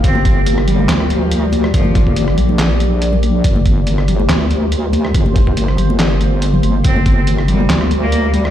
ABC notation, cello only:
X:1
M:4/4
L:1/16
Q:"Swing 16ths" 1/4=141
K:Gm
V:1 name="Cello" clef=bass
C3 z3 G,3 z F,3 z3 | F,4 z12 | z16 | z16 |
C3 z3 G,3 z2 B,3 G, G, |]